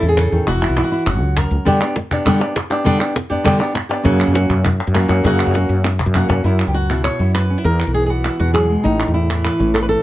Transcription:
Already playing: nylon-string guitar A2 A4
0.02 fretless electric bass E2, nylon-string guitar C#4
0.09 nylon-string guitar G#4
0.17 nylon-string guitar C#3 A4, cajon bass, cajon slap, clap
0.32 fretless electric bass E2, nylon-string guitar D#3
0.47 fretless electric bass E1, nylon-string guitar E3 F#4, cajon bass
0.62 nylon-string guitar E4, clap
0.69 fretless electric bass B1
0.77 nylon-string guitar E4, cajon slap, clap
0.84 nylon-string guitar F#4
0.92 nylon-string guitar E4
1.06 fretless electric bass F#1, nylon-string guitar F#2 F#4, cajon bass, cajon slap, clap
1.21 fretless electric bass C#2
1.37 nylon-string guitar A#4, cajon bass, cajon slap, clap
1.51 fretless electric bass C#2
1.65 nylon-string guitar D3 G3 B3 D4 G4, cajon bass
1.81 nylon-string guitar B3 D4 G4, clap
1.96 muted nylon-string guitar stroke, cajon slap
2.11 nylon-string guitar B3 D4 G4, cajon bass, clap
2.25 nylon-string guitar D3 G3 B3 D4 G4, cajon bass, clap
2.40 nylon-string guitar B3 D4 G4, cajon slap
2.55 muted nylon-string guitar stroke, cajon slap, clap
2.70 nylon-string guitar B3 D4 G4
2.84 nylon-string guitar D3 G3 B3 D4 G4, cajon bass
2.99 nylon-string guitar B3 D4 G4, clap
3.15 muted nylon-string guitar stroke, cajon slap
3.30 nylon-string guitar B3 D4 G4, cajon bass, cajon slap
3.44 nylon-string guitar D3 G3 B3 D4 G4, cajon bass, clap
3.59 nylon-string guitar B3 D4 G4
3.74 muted nylon-string guitar stroke, cajon slap, clap
3.89 nylon-string guitar B3 D4 G4
4.03 fretless electric bass F#2, nylon-string guitar C#3 F#3 A#3 C#4 F#4, cajon bass
4.20 clap
4.27 fretless electric bass F#2
4.34 nylon-string guitar A#3 C#4 F#4, cajon slap
4.49 fretless electric bass F#2, cajon bass, clap
4.64 muted nylon-string guitar stroke, cajon bass, clap
4.80 cajon slap
4.87 fretless electric bass F#2
4.94 nylon-string guitar F#3 A#3 C#4 F#4, cajon slap, clap
5.08 fretless electric bass F#2, nylon-string guitar A#3 C#4 F#4
5.24 fretless electric bass F#2, nylon-string guitar C#3 F#3 A#3 C#4 F#4, cajon bass
5.39 clap
5.47 fretless electric bass F#2
5.54 nylon-string guitar A#3 C#4 F#4, cajon slap
5.69 fretless electric bass F#2, cajon slap
5.84 muted nylon-string guitar stroke, cajon slap, clap
6.00 cajon bass
6.06 fretless electric bass F#2
6.14 nylon-string guitar F#3 A#3 C#4 F#4, cajon bass, clap
6.29 fretless electric bass F#2, nylon-string guitar A#3 C#4 F#4, cajon bass
6.44 fretless electric bass F#2, nylon-string guitar F#2 E4
6.59 clap
6.67 fretless electric bass C#2, nylon-string guitar G4
6.74 nylon-string guitar F#4
6.90 nylon-string guitar B2 E4, clap
7.04 nylon-string guitar C#5, clap
7.19 fretless electric bass F#2, nylon-string guitar F#2 E4
7.34 nylon-string guitar B4, clap
7.50 nylon-string guitar C#4
7.58 nylon-string guitar E4
7.64 fretless electric bass E2, nylon-string guitar E3 A#4
7.80 clap
7.87 fretless electric bass B1
7.94 nylon-string guitar G#4
8.06 nylon-string guitar B3 F#4 G#4
8.25 nylon-string guitar E4, clap
8.40 fretless electric bass E2, nylon-string guitar B2 F#4
8.54 nylon-string guitar F#3 G#4, clap
8.69 nylon-string guitar G#3
8.84 fretless electric bass A1, nylon-string guitar A2 D#4
9.00 clap
9.07 fretless electric bass E2
9.14 nylon-string guitar E4
9.29 nylon-string guitar E3, clap
9.45 nylon-string guitar B4, clap
9.59 fretless electric bass A1, nylon-string guitar A2 C#4
9.74 nylon-string guitar A4, clap
9.82 nylon-string guitar B4
9.89 nylon-string guitar A4

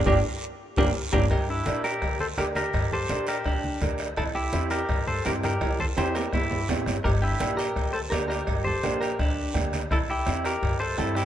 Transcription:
0.05 upright bass G1, upright piano A#3 D4 G4, clean electric guitar D4 G4 A#4, clarinet G4, bombo low, high conga, high timbale, long guiro
0.76 upright bass G1, upright piano A#3 D4 G4, clean electric guitar D4 G4 A#4, clarinet G4, bombo low, high conga, high timbale, long guiro
1.12 upright bass G1, upright piano A#3 D4 G4, clean electric guitar D4 G4 A#4, clarinet G4, bombo low, high conga, high timbale, long guiro
1.30 upright bass G2, clarinet G4, clean electric guitar G4 A#4, bombo low, bombo rim, cowbell, long guiro
1.49 clarinet D4, clean electric guitar E4 G4, high conga
1.65 upright bass A#2, upright piano D4 G4 A#4, bombo rim, cowbell, high conga, short guiro
1.84 clarinet G4, clean electric guitar G4 A#4, bombo rim, short guiro
2.02 upright bass D2, bombo low, bombo rim, cowbell, high conga, long guiro
2.20 clean electric guitar A4 C5, clarinet A4, high conga
2.38 upright bass D2, upright piano D4 G4 A#4, clean electric guitar G4 A#4, clarinet G4, bombo rim, cowbell, high conga, short guiro
2.55 clarinet G4, clean electric guitar G4 A#4, bombo rim, high conga, short guiro
2.73 upright bass G2, bombo low, bombo rim, cowbell, long guiro
2.91 clarinet G4, clean electric guitar A4 C5, high conga, low conga
3.09 upright bass A#2, upright piano D4 G4 A#4, bombo rim, cowbell, high conga, short guiro
3.27 clean electric guitar G4 A#4, clarinet G4, bombo rim, short guiro
3.44 upright bass D2, clean electric guitar D4 G4, clarinet D4, bombo low, bombo rim, cowbell, high conga, long guiro
3.64 high conga
3.80 upright bass D2, upright piano D4 G4 A#4, bombo low, bombo rim, cowbell, high conga, low conga, short guiro
3.98 bombo rim, short guiro
4.16 upright bass C2, clean electric guitar E4 A4, clarinet E4, bombo low, bombo rim, cowbell, long guiro
4.35 clean electric guitar E4 G4, clarinet E4, high conga
4.53 upright bass E2, upright piano C4 E4 G4, bombo rim, cowbell, high conga, short guiro
4.70 clean electric guitar G4 A#4, clarinet G4, bombo rim, short guiro
4.89 upright bass G2, bombo low, bombo rim, cowbell, high conga, long guiro
5.07 clean electric guitar A4 C5, clarinet A4, high conga
5.25 upright bass G2, upright piano C4 E4 G4, clean electric guitar G4 A#4, clarinet G4, bombo rim, cowbell, high conga, short guiro
5.43 clean electric guitar G4 A#4, clarinet G4, bombo rim, high conga, short guiro
5.61 upright bass C2, bombo low, bombo rim, cowbell, high timbale, long guiro
5.80 clean electric guitar A4 C5, clarinet A4, high conga, low conga
5.96 upright bass E2, upright piano C4 E4 G4, clean electric guitar G4 C5, clarinet G4, bombo rim, cowbell, high conga, high timbale, short guiro
6.15 clean electric guitar G4 A#4, clarinet G4, bombo rim, low timbale, short guiro
6.33 upright bass G2, clarinet E4, clean electric guitar E4 G4, bombo low, bombo rim, cowbell, high conga, low timbale, long guiro
6.51 high conga, low timbale
6.69 upright bass A1, upright piano C4 E4 G4, bombo rim, cowbell, high conga, low conga, low timbale, short guiro
6.86 upright bass G1, bombo rim, high conga, low timbale, short guiro
7.04 upright bass G1, clarinet G4, clean electric guitar G4 A#4, bombo low, bombo rim, cowbell, long guiro
7.22 clarinet D4, clean electric guitar E4 G4, high conga
7.40 upright bass A#1, upright piano A#3 D4 G4, bombo rim, cowbell, high conga, short guiro
7.57 clarinet G4, clean electric guitar G4 A#4, bombo rim, short guiro
7.76 upright bass D2, bombo low, bombo rim, cowbell, high conga, long guiro
7.93 clarinet A4, clean electric guitar A4 C5
8.10 upright bass D2, upright piano A#3 D4 G4, clarinet G4, clean electric guitar G4 A#4, bombo rim, cowbell, high conga, low timbale, short guiro
8.28 clarinet G4, clean electric guitar G4 A#4, bombo rim, short guiro
8.47 upright bass G1, bombo low, bombo rim, cowbell, long guiro
8.64 clarinet G4, clean electric guitar A4 C5, high conga, low conga
8.83 upright bass A#1, upright piano A#3 D4 G4, bombo rim, cowbell, high conga, short guiro
9.01 clarinet G4, clean electric guitar G4 A#4, bombo rim, short guiro
9.18 upright bass D2, clarinet D4, clean electric guitar D4 G4, bombo low, bombo rim, cowbell, high conga, long guiro
9.54 upright bass D2, upright piano A#3 D4 G4, bombo low, bombo rim, cowbell, high conga, low conga, short guiro
9.73 bombo rim, high conga, short guiro
9.91 upright bass C2, clean electric guitar E4 A4, clarinet E4, bombo low, bombo rim, cowbell, long guiro
10.09 clean electric guitar E4 G4, clarinet E4, high conga
10.26 upright bass E2, upright piano C4 E4 G4, bombo rim, cowbell, high conga, short guiro
10.45 clean electric guitar G4 A#4, clarinet G4, bombo rim, short guiro
10.62 upright bass G2, bombo low, bombo rim, cowbell, high conga, long guiro
10.80 clean electric guitar A4 C5, clarinet A4
10.98 upright bass G2, upright piano C4 E4 G4, clean electric guitar E4 A4, clarinet E4, bombo rim, cowbell, high conga, short guiro
11.15 clarinet E4, clean electric guitar E4 G4, bombo rim, short guiro

